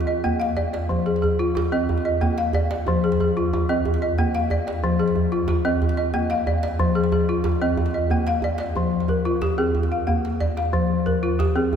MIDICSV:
0, 0, Header, 1, 3, 480
1, 0, Start_track
1, 0, Tempo, 327869
1, 1316, Time_signature, 12, 3, 24, 8
1, 17217, End_track
2, 0, Start_track
2, 0, Title_t, "Balafon"
2, 0, Program_c, 0, 12
2, 103, Note_on_c, 0, 75, 66
2, 351, Note_on_c, 0, 79, 57
2, 353, Note_on_c, 0, 58, 73
2, 580, Note_on_c, 0, 77, 65
2, 830, Note_off_c, 0, 75, 0
2, 830, Note_on_c, 0, 74, 74
2, 835, Note_off_c, 0, 58, 0
2, 1057, Note_off_c, 0, 74, 0
2, 1074, Note_off_c, 0, 79, 0
2, 1075, Note_on_c, 0, 74, 60
2, 1308, Note_on_c, 0, 53, 77
2, 1309, Note_off_c, 0, 77, 0
2, 1552, Note_on_c, 0, 68, 62
2, 1556, Note_off_c, 0, 74, 0
2, 1771, Note_off_c, 0, 68, 0
2, 1788, Note_on_c, 0, 68, 60
2, 1792, Note_off_c, 0, 53, 0
2, 2041, Note_on_c, 0, 65, 78
2, 2254, Note_off_c, 0, 65, 0
2, 2271, Note_on_c, 0, 65, 65
2, 2513, Note_off_c, 0, 68, 0
2, 2520, Note_on_c, 0, 60, 76
2, 2523, Note_on_c, 0, 75, 66
2, 2759, Note_off_c, 0, 60, 0
2, 2986, Note_off_c, 0, 75, 0
2, 2994, Note_off_c, 0, 65, 0
2, 3003, Note_on_c, 0, 75, 64
2, 3238, Note_on_c, 0, 58, 70
2, 3241, Note_on_c, 0, 79, 60
2, 3487, Note_on_c, 0, 77, 70
2, 3717, Note_off_c, 0, 58, 0
2, 3720, Note_off_c, 0, 75, 0
2, 3727, Note_on_c, 0, 74, 74
2, 3950, Note_off_c, 0, 74, 0
2, 3959, Note_off_c, 0, 79, 0
2, 3967, Note_on_c, 0, 74, 56
2, 4202, Note_off_c, 0, 77, 0
2, 4214, Note_on_c, 0, 53, 87
2, 4442, Note_off_c, 0, 74, 0
2, 4449, Note_on_c, 0, 68, 63
2, 4676, Note_off_c, 0, 68, 0
2, 4685, Note_off_c, 0, 53, 0
2, 4694, Note_on_c, 0, 68, 61
2, 4932, Note_on_c, 0, 65, 75
2, 5159, Note_off_c, 0, 65, 0
2, 5177, Note_on_c, 0, 65, 67
2, 5405, Note_off_c, 0, 68, 0
2, 5407, Note_on_c, 0, 60, 72
2, 5407, Note_on_c, 0, 75, 68
2, 5641, Note_off_c, 0, 60, 0
2, 5869, Note_off_c, 0, 75, 0
2, 5886, Note_off_c, 0, 65, 0
2, 5886, Note_on_c, 0, 75, 64
2, 6126, Note_on_c, 0, 79, 64
2, 6128, Note_on_c, 0, 58, 75
2, 6367, Note_on_c, 0, 77, 67
2, 6600, Note_off_c, 0, 75, 0
2, 6601, Note_off_c, 0, 58, 0
2, 6605, Note_on_c, 0, 74, 74
2, 6821, Note_off_c, 0, 74, 0
2, 6838, Note_on_c, 0, 74, 59
2, 6840, Note_off_c, 0, 79, 0
2, 7080, Note_off_c, 0, 77, 0
2, 7080, Note_on_c, 0, 53, 87
2, 7312, Note_on_c, 0, 68, 63
2, 7316, Note_off_c, 0, 74, 0
2, 7557, Note_off_c, 0, 53, 0
2, 7789, Note_on_c, 0, 65, 76
2, 8018, Note_off_c, 0, 65, 0
2, 8032, Note_off_c, 0, 68, 0
2, 8035, Note_on_c, 0, 65, 63
2, 8269, Note_on_c, 0, 75, 67
2, 8270, Note_on_c, 0, 60, 78
2, 8512, Note_off_c, 0, 60, 0
2, 8728, Note_off_c, 0, 75, 0
2, 8746, Note_on_c, 0, 75, 68
2, 8754, Note_off_c, 0, 65, 0
2, 8985, Note_on_c, 0, 79, 64
2, 8987, Note_on_c, 0, 58, 72
2, 9231, Note_on_c, 0, 77, 72
2, 9469, Note_off_c, 0, 58, 0
2, 9469, Note_off_c, 0, 75, 0
2, 9474, Note_on_c, 0, 74, 72
2, 9691, Note_off_c, 0, 74, 0
2, 9708, Note_off_c, 0, 79, 0
2, 9708, Note_on_c, 0, 74, 58
2, 9949, Note_on_c, 0, 53, 89
2, 9951, Note_off_c, 0, 77, 0
2, 10180, Note_on_c, 0, 68, 65
2, 10190, Note_off_c, 0, 74, 0
2, 10413, Note_off_c, 0, 68, 0
2, 10430, Note_off_c, 0, 53, 0
2, 10431, Note_on_c, 0, 68, 65
2, 10672, Note_on_c, 0, 65, 70
2, 10896, Note_off_c, 0, 65, 0
2, 10913, Note_on_c, 0, 65, 62
2, 11149, Note_on_c, 0, 75, 62
2, 11150, Note_on_c, 0, 60, 73
2, 11151, Note_off_c, 0, 68, 0
2, 11391, Note_off_c, 0, 60, 0
2, 11611, Note_off_c, 0, 75, 0
2, 11629, Note_on_c, 0, 75, 59
2, 11632, Note_off_c, 0, 65, 0
2, 11871, Note_on_c, 0, 58, 70
2, 11877, Note_on_c, 0, 79, 58
2, 12115, Note_on_c, 0, 77, 71
2, 12350, Note_off_c, 0, 75, 0
2, 12351, Note_off_c, 0, 58, 0
2, 12358, Note_on_c, 0, 74, 73
2, 12574, Note_off_c, 0, 74, 0
2, 12591, Note_on_c, 0, 74, 62
2, 12594, Note_off_c, 0, 79, 0
2, 12832, Note_on_c, 0, 53, 79
2, 12833, Note_off_c, 0, 77, 0
2, 13072, Note_off_c, 0, 74, 0
2, 13308, Note_on_c, 0, 70, 60
2, 13312, Note_off_c, 0, 53, 0
2, 13547, Note_on_c, 0, 65, 78
2, 13788, Note_on_c, 0, 67, 63
2, 14025, Note_on_c, 0, 68, 64
2, 14027, Note_on_c, 0, 60, 66
2, 14030, Note_off_c, 0, 65, 0
2, 14031, Note_off_c, 0, 70, 0
2, 14270, Note_off_c, 0, 60, 0
2, 14509, Note_off_c, 0, 68, 0
2, 14511, Note_off_c, 0, 67, 0
2, 14518, Note_on_c, 0, 77, 60
2, 14725, Note_off_c, 0, 77, 0
2, 14743, Note_on_c, 0, 77, 59
2, 14748, Note_on_c, 0, 58, 70
2, 15232, Note_off_c, 0, 58, 0
2, 15233, Note_on_c, 0, 74, 73
2, 15457, Note_off_c, 0, 77, 0
2, 15475, Note_on_c, 0, 77, 54
2, 15711, Note_on_c, 0, 53, 83
2, 15715, Note_off_c, 0, 74, 0
2, 15956, Note_off_c, 0, 77, 0
2, 16193, Note_on_c, 0, 70, 59
2, 16194, Note_off_c, 0, 53, 0
2, 16439, Note_on_c, 0, 65, 73
2, 16677, Note_on_c, 0, 67, 65
2, 16916, Note_off_c, 0, 70, 0
2, 16917, Note_on_c, 0, 60, 75
2, 16919, Note_off_c, 0, 65, 0
2, 16922, Note_on_c, 0, 68, 57
2, 17158, Note_off_c, 0, 60, 0
2, 17217, Note_off_c, 0, 67, 0
2, 17217, Note_off_c, 0, 68, 0
2, 17217, End_track
3, 0, Start_track
3, 0, Title_t, "Djembe"
3, 7, Note_on_c, 9, 62, 51
3, 153, Note_off_c, 9, 62, 0
3, 366, Note_on_c, 9, 62, 17
3, 366, Note_on_c, 9, 63, 57
3, 366, Note_on_c, 9, 64, 59
3, 489, Note_off_c, 9, 62, 0
3, 489, Note_on_c, 9, 62, 19
3, 513, Note_off_c, 9, 63, 0
3, 513, Note_off_c, 9, 64, 0
3, 603, Note_off_c, 9, 62, 0
3, 603, Note_on_c, 9, 62, 60
3, 750, Note_off_c, 9, 62, 0
3, 838, Note_on_c, 9, 63, 64
3, 838, Note_on_c, 9, 64, 60
3, 985, Note_off_c, 9, 63, 0
3, 985, Note_off_c, 9, 64, 0
3, 1081, Note_on_c, 9, 62, 65
3, 1209, Note_off_c, 9, 62, 0
3, 1209, Note_on_c, 9, 62, 20
3, 1330, Note_on_c, 9, 63, 57
3, 1330, Note_on_c, 9, 64, 61
3, 1355, Note_off_c, 9, 62, 0
3, 1476, Note_off_c, 9, 63, 0
3, 1476, Note_off_c, 9, 64, 0
3, 1581, Note_on_c, 9, 62, 19
3, 1699, Note_off_c, 9, 62, 0
3, 1699, Note_on_c, 9, 62, 52
3, 1809, Note_on_c, 9, 63, 62
3, 1809, Note_on_c, 9, 64, 61
3, 1845, Note_off_c, 9, 62, 0
3, 1956, Note_off_c, 9, 63, 0
3, 1956, Note_off_c, 9, 64, 0
3, 2295, Note_on_c, 9, 62, 76
3, 2295, Note_on_c, 9, 63, 67
3, 2295, Note_on_c, 9, 64, 70
3, 2442, Note_off_c, 9, 62, 0
3, 2442, Note_off_c, 9, 63, 0
3, 2442, Note_off_c, 9, 64, 0
3, 2526, Note_on_c, 9, 62, 22
3, 2672, Note_off_c, 9, 62, 0
3, 2769, Note_on_c, 9, 63, 70
3, 2769, Note_on_c, 9, 64, 79
3, 2891, Note_on_c, 9, 62, 58
3, 2915, Note_off_c, 9, 63, 0
3, 2915, Note_off_c, 9, 64, 0
3, 3038, Note_off_c, 9, 62, 0
3, 3244, Note_on_c, 9, 63, 74
3, 3244, Note_on_c, 9, 64, 71
3, 3391, Note_off_c, 9, 63, 0
3, 3391, Note_off_c, 9, 64, 0
3, 3479, Note_on_c, 9, 62, 69
3, 3593, Note_off_c, 9, 62, 0
3, 3593, Note_on_c, 9, 62, 26
3, 3708, Note_on_c, 9, 63, 84
3, 3708, Note_on_c, 9, 64, 76
3, 3739, Note_off_c, 9, 62, 0
3, 3841, Note_on_c, 9, 62, 25
3, 3854, Note_off_c, 9, 63, 0
3, 3854, Note_off_c, 9, 64, 0
3, 3963, Note_off_c, 9, 62, 0
3, 3963, Note_on_c, 9, 62, 86
3, 4109, Note_off_c, 9, 62, 0
3, 4196, Note_on_c, 9, 63, 86
3, 4196, Note_on_c, 9, 64, 80
3, 4342, Note_off_c, 9, 63, 0
3, 4342, Note_off_c, 9, 64, 0
3, 4445, Note_on_c, 9, 62, 23
3, 4567, Note_off_c, 9, 62, 0
3, 4567, Note_on_c, 9, 62, 60
3, 4686, Note_on_c, 9, 63, 67
3, 4686, Note_on_c, 9, 64, 77
3, 4713, Note_off_c, 9, 62, 0
3, 4832, Note_off_c, 9, 63, 0
3, 4832, Note_off_c, 9, 64, 0
3, 5174, Note_on_c, 9, 63, 81
3, 5174, Note_on_c, 9, 64, 83
3, 5320, Note_off_c, 9, 63, 0
3, 5320, Note_off_c, 9, 64, 0
3, 5414, Note_on_c, 9, 62, 25
3, 5560, Note_off_c, 9, 62, 0
3, 5642, Note_on_c, 9, 63, 77
3, 5642, Note_on_c, 9, 64, 81
3, 5765, Note_on_c, 9, 62, 62
3, 5789, Note_off_c, 9, 63, 0
3, 5789, Note_off_c, 9, 64, 0
3, 5912, Note_off_c, 9, 62, 0
3, 6119, Note_on_c, 9, 63, 68
3, 6119, Note_on_c, 9, 64, 64
3, 6266, Note_off_c, 9, 63, 0
3, 6266, Note_off_c, 9, 64, 0
3, 6361, Note_on_c, 9, 62, 66
3, 6488, Note_off_c, 9, 62, 0
3, 6488, Note_on_c, 9, 62, 22
3, 6591, Note_on_c, 9, 63, 68
3, 6591, Note_on_c, 9, 64, 69
3, 6634, Note_off_c, 9, 62, 0
3, 6718, Note_on_c, 9, 62, 22
3, 6737, Note_off_c, 9, 63, 0
3, 6737, Note_off_c, 9, 64, 0
3, 6846, Note_off_c, 9, 62, 0
3, 6846, Note_on_c, 9, 62, 73
3, 6993, Note_off_c, 9, 62, 0
3, 7076, Note_on_c, 9, 63, 64
3, 7076, Note_on_c, 9, 64, 64
3, 7222, Note_off_c, 9, 63, 0
3, 7222, Note_off_c, 9, 64, 0
3, 7318, Note_on_c, 9, 62, 20
3, 7431, Note_off_c, 9, 62, 0
3, 7431, Note_on_c, 9, 62, 51
3, 7548, Note_on_c, 9, 63, 61
3, 7548, Note_on_c, 9, 64, 64
3, 7577, Note_off_c, 9, 62, 0
3, 7694, Note_off_c, 9, 63, 0
3, 7694, Note_off_c, 9, 64, 0
3, 8018, Note_on_c, 9, 62, 75
3, 8018, Note_on_c, 9, 63, 74
3, 8018, Note_on_c, 9, 64, 74
3, 8165, Note_off_c, 9, 62, 0
3, 8165, Note_off_c, 9, 63, 0
3, 8165, Note_off_c, 9, 64, 0
3, 8273, Note_on_c, 9, 62, 22
3, 8419, Note_off_c, 9, 62, 0
3, 8516, Note_on_c, 9, 63, 73
3, 8516, Note_on_c, 9, 64, 76
3, 8625, Note_on_c, 9, 62, 63
3, 8662, Note_off_c, 9, 63, 0
3, 8662, Note_off_c, 9, 64, 0
3, 8772, Note_off_c, 9, 62, 0
3, 8984, Note_on_c, 9, 63, 65
3, 8984, Note_on_c, 9, 64, 65
3, 9130, Note_off_c, 9, 63, 0
3, 9130, Note_off_c, 9, 64, 0
3, 9220, Note_on_c, 9, 62, 70
3, 9344, Note_off_c, 9, 62, 0
3, 9344, Note_on_c, 9, 62, 23
3, 9469, Note_on_c, 9, 63, 74
3, 9469, Note_on_c, 9, 64, 71
3, 9491, Note_off_c, 9, 62, 0
3, 9591, Note_on_c, 9, 62, 22
3, 9615, Note_off_c, 9, 63, 0
3, 9615, Note_off_c, 9, 64, 0
3, 9707, Note_off_c, 9, 62, 0
3, 9707, Note_on_c, 9, 62, 80
3, 9853, Note_off_c, 9, 62, 0
3, 9944, Note_on_c, 9, 62, 24
3, 9944, Note_on_c, 9, 63, 79
3, 9944, Note_on_c, 9, 64, 68
3, 10091, Note_off_c, 9, 62, 0
3, 10091, Note_off_c, 9, 63, 0
3, 10091, Note_off_c, 9, 64, 0
3, 10298, Note_on_c, 9, 62, 58
3, 10425, Note_on_c, 9, 63, 69
3, 10425, Note_on_c, 9, 64, 71
3, 10445, Note_off_c, 9, 62, 0
3, 10552, Note_on_c, 9, 62, 25
3, 10571, Note_off_c, 9, 63, 0
3, 10571, Note_off_c, 9, 64, 0
3, 10698, Note_off_c, 9, 62, 0
3, 10785, Note_on_c, 9, 62, 23
3, 10892, Note_off_c, 9, 62, 0
3, 10892, Note_on_c, 9, 62, 72
3, 10892, Note_on_c, 9, 63, 79
3, 10892, Note_on_c, 9, 64, 84
3, 11027, Note_off_c, 9, 62, 0
3, 11027, Note_on_c, 9, 62, 23
3, 11039, Note_off_c, 9, 63, 0
3, 11039, Note_off_c, 9, 64, 0
3, 11174, Note_off_c, 9, 62, 0
3, 11381, Note_on_c, 9, 62, 26
3, 11381, Note_on_c, 9, 63, 81
3, 11381, Note_on_c, 9, 64, 87
3, 11502, Note_off_c, 9, 62, 0
3, 11502, Note_on_c, 9, 62, 63
3, 11528, Note_off_c, 9, 63, 0
3, 11528, Note_off_c, 9, 64, 0
3, 11623, Note_off_c, 9, 62, 0
3, 11623, Note_on_c, 9, 62, 24
3, 11744, Note_off_c, 9, 62, 0
3, 11744, Note_on_c, 9, 62, 24
3, 11860, Note_off_c, 9, 62, 0
3, 11860, Note_on_c, 9, 62, 22
3, 11860, Note_on_c, 9, 63, 67
3, 11860, Note_on_c, 9, 64, 72
3, 12006, Note_off_c, 9, 62, 0
3, 12006, Note_off_c, 9, 63, 0
3, 12006, Note_off_c, 9, 64, 0
3, 12100, Note_on_c, 9, 62, 76
3, 12214, Note_off_c, 9, 62, 0
3, 12214, Note_on_c, 9, 62, 25
3, 12328, Note_off_c, 9, 62, 0
3, 12328, Note_on_c, 9, 62, 23
3, 12328, Note_on_c, 9, 63, 77
3, 12328, Note_on_c, 9, 64, 73
3, 12475, Note_off_c, 9, 62, 0
3, 12475, Note_off_c, 9, 63, 0
3, 12475, Note_off_c, 9, 64, 0
3, 12562, Note_on_c, 9, 62, 84
3, 12688, Note_off_c, 9, 62, 0
3, 12688, Note_on_c, 9, 62, 23
3, 12817, Note_on_c, 9, 63, 63
3, 12817, Note_on_c, 9, 64, 67
3, 12834, Note_off_c, 9, 62, 0
3, 12964, Note_off_c, 9, 63, 0
3, 12964, Note_off_c, 9, 64, 0
3, 13059, Note_on_c, 9, 62, 21
3, 13181, Note_off_c, 9, 62, 0
3, 13181, Note_on_c, 9, 62, 51
3, 13296, Note_on_c, 9, 63, 59
3, 13296, Note_on_c, 9, 64, 62
3, 13328, Note_off_c, 9, 62, 0
3, 13443, Note_off_c, 9, 63, 0
3, 13443, Note_off_c, 9, 64, 0
3, 13784, Note_on_c, 9, 62, 73
3, 13784, Note_on_c, 9, 63, 67
3, 13784, Note_on_c, 9, 64, 68
3, 13931, Note_off_c, 9, 62, 0
3, 13931, Note_off_c, 9, 63, 0
3, 13931, Note_off_c, 9, 64, 0
3, 14030, Note_on_c, 9, 62, 23
3, 14177, Note_off_c, 9, 62, 0
3, 14268, Note_on_c, 9, 63, 71
3, 14268, Note_on_c, 9, 64, 67
3, 14396, Note_on_c, 9, 62, 54
3, 14415, Note_off_c, 9, 63, 0
3, 14415, Note_off_c, 9, 64, 0
3, 14542, Note_off_c, 9, 62, 0
3, 14764, Note_on_c, 9, 63, 62
3, 14764, Note_on_c, 9, 64, 63
3, 14910, Note_off_c, 9, 63, 0
3, 14910, Note_off_c, 9, 64, 0
3, 15003, Note_on_c, 9, 62, 61
3, 15129, Note_off_c, 9, 62, 0
3, 15129, Note_on_c, 9, 62, 20
3, 15238, Note_on_c, 9, 63, 64
3, 15238, Note_on_c, 9, 64, 59
3, 15275, Note_off_c, 9, 62, 0
3, 15361, Note_on_c, 9, 62, 21
3, 15385, Note_off_c, 9, 63, 0
3, 15385, Note_off_c, 9, 64, 0
3, 15479, Note_off_c, 9, 62, 0
3, 15479, Note_on_c, 9, 62, 70
3, 15625, Note_off_c, 9, 62, 0
3, 15715, Note_on_c, 9, 63, 62
3, 15715, Note_on_c, 9, 64, 63
3, 15861, Note_off_c, 9, 63, 0
3, 15861, Note_off_c, 9, 64, 0
3, 16206, Note_on_c, 9, 63, 58
3, 16206, Note_on_c, 9, 64, 58
3, 16353, Note_off_c, 9, 63, 0
3, 16353, Note_off_c, 9, 64, 0
3, 16687, Note_on_c, 9, 62, 70
3, 16687, Note_on_c, 9, 63, 66
3, 16687, Note_on_c, 9, 64, 63
3, 16834, Note_off_c, 9, 62, 0
3, 16834, Note_off_c, 9, 63, 0
3, 16834, Note_off_c, 9, 64, 0
3, 16926, Note_on_c, 9, 62, 20
3, 17072, Note_off_c, 9, 62, 0
3, 17169, Note_on_c, 9, 63, 71
3, 17169, Note_on_c, 9, 64, 69
3, 17217, Note_off_c, 9, 63, 0
3, 17217, Note_off_c, 9, 64, 0
3, 17217, End_track
0, 0, End_of_file